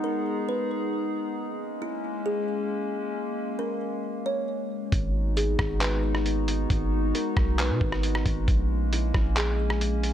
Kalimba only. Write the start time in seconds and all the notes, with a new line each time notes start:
0.04 A#4
0.49 B4
1.82 E4
2.26 G#4
3.59 A#4
4.26 C#5
5.37 G#4
5.81 B4
7.15 A#4
7.60 B4
8.93 E4
9.37 G#4